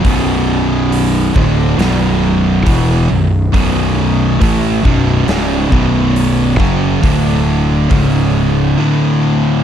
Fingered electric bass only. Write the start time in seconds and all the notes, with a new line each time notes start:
0.04 B0
1.36 D1
1.78 B0
2.67 E1
3.11 B0
3.54 B0
4.42 A1
4.85 B0
5.29 C#1
5.72 B0
6.59 F#1
7.03 D1
7.91 C#1